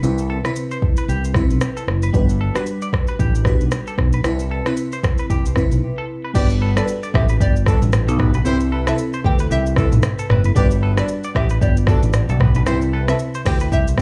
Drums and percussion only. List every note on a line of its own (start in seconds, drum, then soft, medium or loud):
0.03 shaker medium
0.18 shaker medium
0.45 cross-stick medium
0.45 shaker soft
0.56 shaker medium
0.71 shaker soft
0.82 kick medium
0.97 shaker medium
1.09 shaker medium
1.24 shaker medium
1.34 kick medium
1.34 cross-stick medium
1.34 shaker soft
1.50 shaker soft
1.61 cross-stick loud
1.61 shaker medium
1.77 shaker medium
1.88 cross-stick medium
2.02 shaker medium
2.14 kick loud
2.14 shaker medium
2.29 shaker medium
2.55 cross-stick medium
2.55 shaker soft
2.66 shaker medium
2.82 shaker soft
2.93 kick medium
2.93 cross-stick loud
3.07 shaker medium
3.19 kick medium
3.19 shaker medium
3.35 shaker medium
3.45 kick medium
3.45 cross-stick medium
3.45 shaker soft
3.61 shaker soft
3.71 cross-stick loud
3.71 shaker medium
3.87 shaker medium
3.98 kick medium
3.98 cross-stick medium
4.13 shaker medium
4.24 cross-stick loud
4.24 shaker medium
4.39 shaker medium
4.66 cross-stick medium
4.66 shaker soft
4.77 shaker medium
4.92 shaker soft
5.03 kick medium
5.03 cross-stick loud
5.03 shaker medium
5.18 shaker medium
5.30 kick medium
5.30 shaker medium
5.46 shaker medium
5.56 kick medium
5.56 cross-stick medium
5.56 shaker soft
5.72 shaker soft
6.35 kick loud
6.35 crash loud
6.35 shaker medium
6.50 shaker medium
6.77 cross-stick loud
6.77 shaker soft
6.88 shaker medium
7.03 shaker medium
7.14 kick loud
7.14 cross-stick loud
7.29 shaker medium
7.40 kick medium
7.40 shaker medium
7.56 shaker medium
7.66 kick medium
7.66 cross-stick medium
7.66 shaker medium
7.82 mid tom loud
7.82 shaker medium
7.93 cross-stick loud
7.93 shaker medium
8.08 shaker medium
8.19 kick medium
8.19 cross-stick medium
8.19 mid tom loud
8.34 shaker medium
8.45 shaker medium
8.60 shaker medium
8.87 cross-stick loud
8.87 shaker medium
8.98 shaker medium
9.13 shaker medium
9.24 kick loud
9.39 shaker medium
9.51 shaker medium
9.66 shaker medium
9.76 kick medium
9.76 cross-stick medium
9.76 shaker soft
9.92 mid tom loud
9.92 shaker medium
10.03 cross-stick loud
10.03 shaker medium
10.19 shaker medium
10.30 cross-stick medium
10.30 mid tom loud
10.44 shaker medium
10.56 kick loud
10.56 shaker medium
10.71 shaker medium
10.97 cross-stick loud
10.97 shaker soft
11.08 shaker medium
11.24 shaker medium
11.35 kick loud
11.35 cross-stick loud
11.49 shaker medium
11.61 kick loud
11.61 shaker medium
11.77 shaker medium
11.87 kick loud
11.87 cross-stick loud
11.87 shaker soft
12.03 mid tom loud
12.03 shaker medium
12.13 cross-stick loud
12.13 shaker medium
12.29 shaker medium
12.40 kick medium
12.40 cross-stick medium
12.40 mid tom loud
12.55 shaker medium
12.66 cross-stick loud
12.66 shaker medium
12.82 shaker medium
13.08 cross-stick loud
13.08 shaker soft
13.19 shaker medium
13.34 shaker medium
13.45 kick loud
13.45 cross-stick loud
13.45 open hi-hat medium
13.45 shaker medium
13.60 shaker medium
13.72 kick medium
13.72 shaker medium
13.87 shaker medium
13.98 kick loud
13.98 cross-stick medium